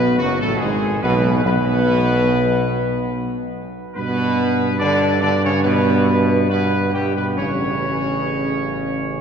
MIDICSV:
0, 0, Header, 1, 5, 480
1, 0, Start_track
1, 0, Tempo, 837989
1, 354, Time_signature, 4, 2, 24, 8
1, 3232, Tempo, 874636
1, 5189, End_track
2, 0, Start_track
2, 0, Title_t, "Trumpet section"
2, 0, Program_c, 0, 61
2, 0, Note_on_c, 0, 71, 127
2, 90, Note_off_c, 0, 71, 0
2, 102, Note_on_c, 0, 66, 120
2, 219, Note_off_c, 0, 66, 0
2, 229, Note_on_c, 0, 69, 124
2, 333, Note_on_c, 0, 68, 115
2, 343, Note_off_c, 0, 69, 0
2, 583, Note_off_c, 0, 68, 0
2, 584, Note_on_c, 0, 71, 112
2, 811, Note_off_c, 0, 71, 0
2, 826, Note_on_c, 0, 71, 127
2, 2004, Note_off_c, 0, 71, 0
2, 2261, Note_on_c, 0, 71, 127
2, 2722, Note_off_c, 0, 71, 0
2, 2741, Note_on_c, 0, 74, 125
2, 2969, Note_off_c, 0, 74, 0
2, 2985, Note_on_c, 0, 74, 118
2, 3101, Note_off_c, 0, 74, 0
2, 3111, Note_on_c, 0, 73, 124
2, 3217, Note_on_c, 0, 71, 121
2, 3225, Note_off_c, 0, 73, 0
2, 3677, Note_off_c, 0, 71, 0
2, 3692, Note_on_c, 0, 71, 117
2, 3923, Note_off_c, 0, 71, 0
2, 3935, Note_on_c, 0, 67, 109
2, 4054, Note_off_c, 0, 67, 0
2, 4061, Note_on_c, 0, 71, 107
2, 4117, Note_off_c, 0, 71, 0
2, 4179, Note_on_c, 0, 73, 114
2, 5189, Note_off_c, 0, 73, 0
2, 5189, End_track
3, 0, Start_track
3, 0, Title_t, "French horn section"
3, 0, Program_c, 1, 60
3, 0, Note_on_c, 1, 59, 107
3, 95, Note_off_c, 1, 59, 0
3, 119, Note_on_c, 1, 54, 104
3, 229, Note_off_c, 1, 54, 0
3, 235, Note_on_c, 1, 57, 105
3, 346, Note_off_c, 1, 57, 0
3, 351, Note_on_c, 1, 56, 100
3, 575, Note_off_c, 1, 56, 0
3, 593, Note_on_c, 1, 59, 110
3, 815, Note_off_c, 1, 59, 0
3, 832, Note_on_c, 1, 59, 125
3, 2007, Note_off_c, 1, 59, 0
3, 2267, Note_on_c, 1, 59, 127
3, 2726, Note_off_c, 1, 59, 0
3, 2747, Note_on_c, 1, 62, 125
3, 2973, Note_off_c, 1, 62, 0
3, 2982, Note_on_c, 1, 62, 118
3, 3099, Note_off_c, 1, 62, 0
3, 3113, Note_on_c, 1, 61, 123
3, 3224, Note_on_c, 1, 59, 117
3, 3234, Note_off_c, 1, 61, 0
3, 3680, Note_off_c, 1, 59, 0
3, 3697, Note_on_c, 1, 59, 102
3, 3926, Note_off_c, 1, 59, 0
3, 3947, Note_on_c, 1, 55, 98
3, 4060, Note_off_c, 1, 55, 0
3, 4065, Note_on_c, 1, 59, 92
3, 4179, Note_off_c, 1, 59, 0
3, 4183, Note_on_c, 1, 61, 109
3, 5189, Note_off_c, 1, 61, 0
3, 5189, End_track
4, 0, Start_track
4, 0, Title_t, "Trombone section"
4, 0, Program_c, 2, 61
4, 0, Note_on_c, 2, 47, 106
4, 99, Note_off_c, 2, 47, 0
4, 121, Note_on_c, 2, 42, 100
4, 173, Note_off_c, 2, 42, 0
4, 239, Note_on_c, 2, 45, 100
4, 348, Note_off_c, 2, 45, 0
4, 356, Note_on_c, 2, 44, 96
4, 578, Note_off_c, 2, 44, 0
4, 595, Note_on_c, 2, 47, 119
4, 816, Note_off_c, 2, 47, 0
4, 838, Note_on_c, 2, 47, 120
4, 2010, Note_off_c, 2, 47, 0
4, 2281, Note_on_c, 2, 47, 127
4, 2732, Note_off_c, 2, 47, 0
4, 2757, Note_on_c, 2, 50, 125
4, 2978, Note_off_c, 2, 50, 0
4, 2996, Note_on_c, 2, 50, 123
4, 3050, Note_off_c, 2, 50, 0
4, 3118, Note_on_c, 2, 49, 116
4, 3172, Note_off_c, 2, 49, 0
4, 3237, Note_on_c, 2, 47, 121
4, 3687, Note_off_c, 2, 47, 0
4, 3706, Note_on_c, 2, 47, 110
4, 3930, Note_off_c, 2, 47, 0
4, 3945, Note_on_c, 2, 43, 94
4, 4059, Note_off_c, 2, 43, 0
4, 4070, Note_on_c, 2, 47, 94
4, 4186, Note_on_c, 2, 49, 105
4, 4191, Note_off_c, 2, 47, 0
4, 5189, Note_off_c, 2, 49, 0
4, 5189, End_track
5, 0, Start_track
5, 0, Title_t, "Tuba"
5, 0, Program_c, 3, 58
5, 0, Note_on_c, 3, 35, 109
5, 108, Note_on_c, 3, 30, 107
5, 117, Note_off_c, 3, 35, 0
5, 234, Note_on_c, 3, 33, 103
5, 243, Note_off_c, 3, 30, 0
5, 353, Note_off_c, 3, 33, 0
5, 356, Note_on_c, 3, 32, 102
5, 578, Note_off_c, 3, 32, 0
5, 592, Note_on_c, 3, 35, 127
5, 815, Note_off_c, 3, 35, 0
5, 833, Note_on_c, 3, 35, 127
5, 2007, Note_off_c, 3, 35, 0
5, 2272, Note_on_c, 3, 43, 117
5, 4188, Note_on_c, 3, 33, 94
5, 4196, Note_off_c, 3, 43, 0
5, 5189, Note_off_c, 3, 33, 0
5, 5189, End_track
0, 0, End_of_file